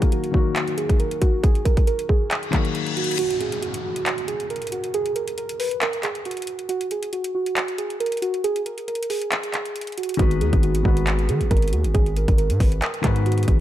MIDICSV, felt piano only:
0, 0, Header, 1, 2, 480
1, 0, Start_track
1, 0, Key_signature, -6, "minor"
1, 0, Tempo, 437956
1, 1573, Time_signature, 4, 2, 24, 8
1, 14908, End_track
2, 0, Start_track
2, 0, Title_t, "Felt piano"
2, 0, Program_c, 0, 0
2, 0, Control_c, 0, 64, 127
2, 0, Note_on_c, 0, 51, 86
2, 0, Note_on_c, 0, 54, 79
2, 0, Note_on_c, 0, 58, 86
2, 0, Note_on_c, 0, 66, 86
2, 0, Note_on_c, 0, 70, 105
2, 0, Note_on_c, 0, 73, 81
2, 254, Note_off_c, 0, 51, 0
2, 261, Note_off_c, 0, 54, 0
2, 268, Note_off_c, 0, 58, 0
2, 274, Note_off_c, 0, 66, 0
2, 281, Note_off_c, 0, 70, 0
2, 346, Note_on_c, 0, 51, 73
2, 360, Note_on_c, 0, 54, 72
2, 374, Note_on_c, 0, 58, 64
2, 387, Note_on_c, 0, 66, 75
2, 400, Note_on_c, 0, 70, 87
2, 1175, Note_off_c, 0, 51, 0
2, 1181, Note_off_c, 0, 54, 0
2, 1188, Note_off_c, 0, 58, 0
2, 1195, Note_off_c, 0, 66, 0
2, 1201, Note_off_c, 0, 70, 0
2, 2747, Note_on_c, 0, 51, 72
2, 2761, Note_on_c, 0, 54, 68
2, 2774, Note_on_c, 0, 58, 68
2, 2788, Note_on_c, 0, 66, 65
2, 2801, Note_on_c, 0, 70, 84
2, 3374, Note_off_c, 0, 51, 0
2, 3381, Note_off_c, 0, 54, 0
2, 3388, Note_off_c, 0, 58, 0
2, 3394, Note_off_c, 0, 66, 0
2, 3401, Note_off_c, 0, 70, 0
2, 3508, Control_c, 0, 64, 0
2, 3516, Note_off_c, 0, 73, 0
2, 11147, Note_on_c, 0, 51, 94
2, 11160, Note_on_c, 0, 56, 85
2, 11174, Note_on_c, 0, 59, 80
2, 11187, Note_on_c, 0, 66, 82
2, 11201, Note_on_c, 0, 71, 93
2, 11395, Control_c, 0, 64, 127
2, 11774, Note_off_c, 0, 51, 0
2, 11780, Note_off_c, 0, 56, 0
2, 11788, Note_off_c, 0, 59, 0
2, 11794, Note_off_c, 0, 66, 0
2, 11801, Note_off_c, 0, 71, 0
2, 11868, Note_on_c, 0, 51, 67
2, 11882, Note_on_c, 0, 56, 71
2, 11895, Note_on_c, 0, 59, 70
2, 11909, Note_on_c, 0, 66, 69
2, 11922, Note_on_c, 0, 71, 81
2, 12696, Note_off_c, 0, 51, 0
2, 12702, Note_off_c, 0, 56, 0
2, 12709, Note_off_c, 0, 59, 0
2, 12716, Note_off_c, 0, 66, 0
2, 12723, Note_off_c, 0, 71, 0
2, 14265, Note_on_c, 0, 51, 71
2, 14278, Note_on_c, 0, 56, 74
2, 14292, Note_on_c, 0, 59, 70
2, 14305, Note_on_c, 0, 66, 67
2, 14319, Note_on_c, 0, 71, 86
2, 14893, Note_off_c, 0, 51, 0
2, 14899, Note_off_c, 0, 56, 0
2, 14906, Note_off_c, 0, 59, 0
2, 14908, Note_off_c, 0, 66, 0
2, 14908, Note_off_c, 0, 71, 0
2, 14908, End_track
0, 0, End_of_file